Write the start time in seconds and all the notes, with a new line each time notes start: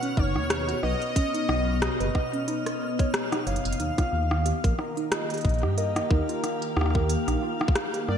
Already playing: B2 B3 C#5 D#5 F#5 F6
0.03 C#4, closed hi-hat
0.17 F#1 D#4 C#5, kick
0.36 D#2, cross-stick
0.50 cross-stick, closed hi-hat
0.69 F#4, closed hi-hat
0.83 B1 B4 D#5, cross-stick
1.02 closed hi-hat
1.16 C#4, kick, closed hi-hat
1.34 D#4, closed hi-hat
1.49 B1, cross-stick
1.82 F#4, cross-stick, closed hi-hat
2.00 F#1 B4, closed hi-hat
2.15 kick, cross-stick
2.33 C#4, closed hi-hat
2.48 D#4, closed hi-hat
2.66 cross-stick, closed hi-hat
2.99 C#5, kick, closed hi-hat
3.14 cross-stick, closed hi-hat
3.32 D#4, cross-stick, closed hi-hat
3.47 F#1 C#5 F5, closed hi-hat
3.56 closed hi-hat
3.65 F#1, closed hi-hat
3.73 closed hi-hat
3.80 D#2 D#3 D#4, closed hi-hat
3.98 F4, kick, cross-stick, closed hi-hat
4.13 D#2
4.31 A#3, cross-stick
4.46 G4, closed hi-hat
4.62 A#1 G4 A#4, kick, closed hi-hat
4.79 A#4, cross-stick
4.96 D#4 F5, closed hi-hat
5.12 F4 D#5, cross-stick, closed hi-hat
5.30 closed hi-hat
5.34 closed hi-hat
5.37 closed hi-hat
5.41 A#1, kick, closed hi-hat
5.49 closed hi-hat
5.54 closed hi-hat
5.59 closed hi-hat
5.63 G2 G4, cross-stick
5.78 A#4 D#5, closed hi-hat
5.96 cross-stick, closed hi-hat
6.11 D#2 D#4 A#4, kick
6.29 F4, closed hi-hat
6.44 cross-stick, closed hi-hat
6.62 closed hi-hat
6.76 D#2 G4, cross-stick
6.81 cross-stick
6.86 cross-stick
6.90 cross-stick
6.95 A#4, kick
7.09 closed hi-hat
7.28 A#1 D#4, cross-stick, closed hi-hat
7.42 F4
7.61 cross-stick
7.68 kick
7.75 cross-stick, closed hi-hat
7.94 G4, closed hi-hat
8.08 G2 A#4 D5, cross-stick